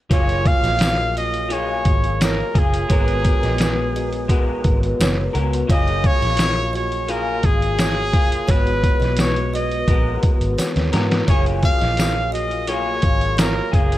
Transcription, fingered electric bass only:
0.11 F#1
0.63 A#1
1.86 G#1
2.55 F#1
2.90 G#1
3.43 A#1
4.65 G#1
5.00 F#1
5.35 C#2
5.69 F#1
6.22 A#1
7.44 G#1
8.14 F#1
8.49 G#1
9.01 B1
9.88 A#1
10.23 muted fingered electric bass stroke
10.41 G#1
10.59 muted fingered electric bass stroke
10.76 D#2
10.93 G#2
11.28 F#1
11.82 A#1
13.03 G#1
13.73 F#1

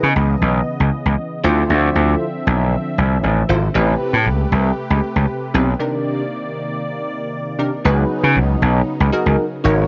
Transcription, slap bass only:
0.03 C#3
0.16 C#2
0.41 B1
0.80 C#2
1.06 C#2
1.44 D2
1.70 D2
1.95 D2
2.47 B1
2.98 C2
3.23 A1
3.49 G#1
3.75 A1
4.13 A2
4.26 C#2
4.52 C2
4.90 C#2
5.16 C#2
5.54 B1
7.85 C#2
8.23 C#3
8.36 C#2
8.62 B1
9.00 C#2
9.26 C#2
9.65 G#1

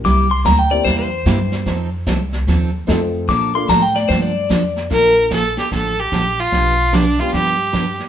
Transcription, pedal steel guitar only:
0.05 D6
0.31 C6
0.46 A#5
0.59 G5
0.71 D5
0.85 C5
0.99 C5
3.29 D6
3.55 C6
3.70 A#5
3.82 G5
3.96 D5
4.09 C5
4.22 D5

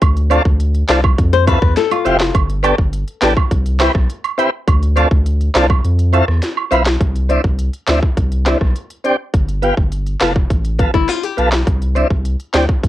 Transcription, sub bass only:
0.02 D2
0.45 D2
0.89 C2
1.18 F2
1.62 E2
2.06 F1
2.35 G1
2.78 G1
3.22 A1
3.51 C2
3.95 B1
4.68 D2
5.11 D2
5.55 C2
5.84 F2
6.28 E2
6.72 B1
7.01 C2
7.44 C2
7.88 D2
8.17 C2
8.61 B1
9.34 G1
9.77 G1
10.21 F1
10.50 A1
10.94 G1
11.38 B1
11.67 C2
12.10 C2
12.54 D2
12.84 C2

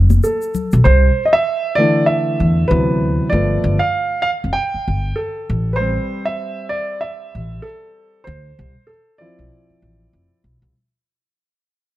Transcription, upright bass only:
Already playing: F1
0.73 B1
0.85 C2
2.40 E2
2.71 D2
3.32 G1
3.64 G1
4.44 F1
4.74 muted upright bass stroke
4.88 G1
5.50 A1
7.35 A1
8.27 D2
8.59 C2
9.39 B1
9.70 muted upright bass stroke
9.82 A1
10.13 F1
10.44 B1
10.62 C2

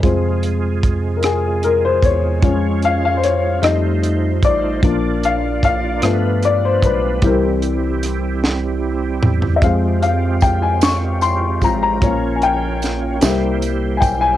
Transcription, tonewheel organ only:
0.03 C3 G#3 F4 G#4
2.40 C#4 F4 C#5
3.62 A3 D#4 F4 C5
4.83 A#3 D4 D5
6.02 G3 B4
7.22 G3 C4 E4 G4
9.60 G#3 F4
12.00 A#3 C#4 C#5
13.20 E4 G4 C5

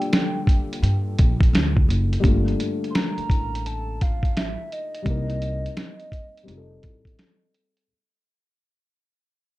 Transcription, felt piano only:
Already playing: G3 A#3 D4 F4 G4
2.20 D3 G3 A#3
2.26 A3 F4
5.02 G3 A#3 C4
5.08 D#4 A#4
6.43 G3 C4 D#4
6.49 F4 G#4
6.58 A4

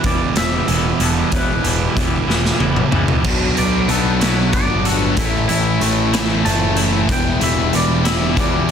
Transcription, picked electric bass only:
0.04 E1
0.37 E1
0.68 E1
0.99 E1
1.33 E1
1.64 E1
1.97 E1
2.28 E1
2.60 E1
2.92 C#2
3.25 B1
3.57 B1
3.89 B1
4.54 G1
5.17 A1
5.50 A1
5.81 A1
6.46 F#1
7.10 E1
7.42 E1
7.74 E1
8.37 E2

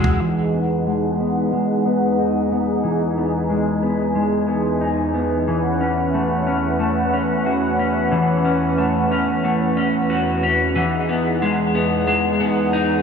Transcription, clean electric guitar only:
Already playing: E3 G#3 D#4 F#4
0.21 E3
0.54 B3
0.87 G#3
1.20 B3
1.53 G#3
1.86 B3
2.19 D#4
2.52 B3
2.84 E3
3.18 B3
3.50 G#3
3.83 B3
4.15 G#3
4.48 B3
4.81 D#4
5.14 B3
5.48 E3
5.81 C#4
6.14 A3
6.47 C#4
6.80 A3
7.14 C#4
7.46 F#4
7.79 C#4
8.12 E3
8.45 C#4
8.78 A3
9.12 C#4
9.44 A3
9.77 C#4
10.10 F#4
10.43 C#4
10.75 E3
11.09 B3
11.42 G#3
11.75 B3
12.07 G#3
12.40 B3
12.73 D#4

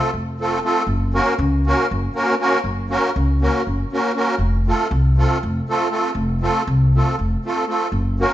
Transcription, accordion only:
Already playing: C4 F4 A4
0.40 A3 C4 F4 A4
0.63 A3 C4 F4 A4
1.14 A#3 C#4 F#4 A#4
1.67 A#3 C#4 F#4 A#4
2.14 A#3 C#4 F#4 A#4
2.40 A#3 C#4 F#4 A#4
2.90 A#3 C#4 F#4 A#4
3.41 A#3 C#4 F#4 A#4
3.92 A#3 C#4 F#4 A#4
4.15 A#3 C#4 F#4 A#4
4.67 A3 C4 F4 A4
5.16 A3 C4 F4 A4
5.69 A3 C4 F4 A4
5.90 A3 C4 F4 A4
6.41 A3 C4 F4 A4
6.95 A3 C4 F4 A4
7.45 A3 C4 F4 A4
7.67 A3 C4 F4 A4
8.20 A#3 C#4 F#4 A#4

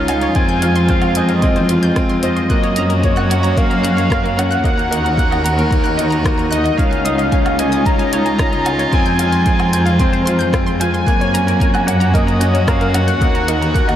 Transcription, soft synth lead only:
Already playing: F5
0.36 G#5
0.90 F5
1.17 D#5
2.23 D#5
3.04 C#5
3.58 F5
4.39 F#5
6.51 D#5
6.77 F5
7.59 G#5
7.86 A#5
8.93 G#5
10.01 C5
10.80 G#5
11.86 F#5
12.14 D#5
12.68 F5
12.94 F#5

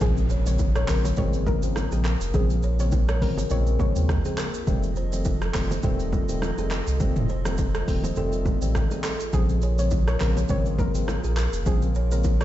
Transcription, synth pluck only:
0.02 G#4
0.47 C#5
0.76 C#5
0.89 A#4
1.18 C#5
1.47 A#4
2.35 G#4
2.80 C#5
3.09 C#5
3.22 A#4
3.51 C#5
3.80 C#5
9.34 G#4
9.79 C#5
10.08 C#5
10.21 A#4
10.50 C#5
10.79 A#4
11.67 G#4
12.12 A#4
12.41 C#5

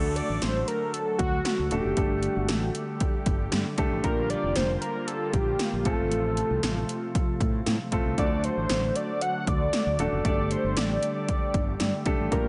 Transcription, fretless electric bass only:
Already playing: D2
0.29 A1
0.42 A1
1.20 D2
1.59 D2
1.72 D#1
1.85 F#1
1.97 G1
2.36 G1
2.49 A1
3.26 G1
3.53 G2
3.78 C2
3.91 A1
4.04 A#1
4.43 F1
4.56 F1
5.34 A#1
5.73 A#1
5.86 A1
5.99 G1
6.11 A1
6.50 C2
6.63 A1
7.41 A2
7.66 A2
7.92 A1
8.05 C2
8.18 D2
8.57 A1
8.70 A1
9.47 D2
9.86 D2
9.99 D#1
10.12 F#1
10.25 G1
10.64 G1
10.77 A1
11.54 G1
11.80 G2
12.06 C2
12.19 A1
12.32 A#1

